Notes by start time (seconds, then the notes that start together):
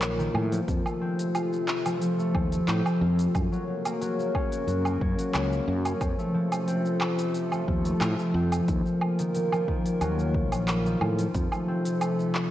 Already playing: A#1 D#3 F3 F#3 A#3 C4 F4 A#4
0.02 clap, open hi-hat, shaker
0.19 D#3, shaker
0.34 A2 D#3, low woodblock
0.52 F3, open hi-hat, shaker
0.68 F2 C3 F3 A3 F4 A4, kick, open hi-hat, shaker
0.85 A3, low woodblock, shaker
1.01 C4
1.19 open hi-hat, shaker
1.34 F4, open hi-hat, low woodblock, shaker
1.53 shaker
1.68 clap
1.85 F3, open hi-hat, low woodblock, shaker
2.01 F3, open hi-hat, shaker
2.18 A3, shaker
2.34 D#2 F3, kick, low woodblock
2.52 A3, open hi-hat, shaker
2.68 A2 C4, clap, open hi-hat, shaker
2.86 low woodblock, shaker
3.01 F2 F4
3.19 open hi-hat, shaker
3.34 F#2 C#3 F#3 A#3 F#4 A#4, kick, open hi-hat, low woodblock, shaker
3.52 F#3, shaker
3.68 F#3
3.85 A#3, open hi-hat, low woodblock, shaker
4.01 F#3, open hi-hat, shaker
4.19 A#3, shaker
4.35 C#4, kick, low woodblock
4.52 open hi-hat, shaker
4.67 F#2 F#4, open hi-hat, shaker
4.85 low woodblock, shaker
5.01 F#2 C#5, kick
5.19 F#3, open hi-hat, shaker
5.34 C#2 A#3, clap, open hi-hat, low woodblock, shaker
5.53 shaker
5.68 F#2
5.85 C#4, open hi-hat, low woodblock, shaker
6.01 F2 C3 F3 A3 F4 A4, kick, open hi-hat, low woodblock, shaker
6.19 A3, shaker
6.34 F3
6.52 A3, open hi-hat, low woodblock, shaker
6.68 C4, open hi-hat, shaker
6.86 shaker
7.01 A3, clap, low woodblock
7.19 open hi-hat, shaker
7.34 open hi-hat, shaker
7.52 F3, low woodblock, shaker
7.68 D#2 F3, kick
7.85 A3, open hi-hat, shaker
8.01 A2 F3, clap, open hi-hat, low woodblock, shaker
8.19 A3, shaker
8.34 F2 C4
8.52 open hi-hat, low woodblock, shaker
8.68 D#2 D#3 F3 A#3 F4 A#4, kick, open hi-hat, shaker
8.86 shaker
9.01 low woodblock
9.19 D#3, open hi-hat, shaker
9.34 D#3, open hi-hat, shaker
9.52 F3, low woodblock, shaker
9.68 D#3, kick
9.86 F3, open hi-hat, shaker
10.01 D#2 F#3, open hi-hat, low woodblock, shaker
10.19 shaker
10.35 F3, kick
10.52 A#1, open hi-hat, low woodblock, shaker
10.68 clap, open hi-hat, shaker
10.86 D#3, shaker
11.01 A2 D#3, low woodblock
11.19 F3, open hi-hat, shaker
11.35 F2 C3 F3 A3 A4, kick, open hi-hat, shaker
11.52 A3, low woodblock, shaker
11.68 C4
11.86 open hi-hat, shaker
12.01 A3, open hi-hat, low woodblock, shaker
12.20 shaker
12.35 clap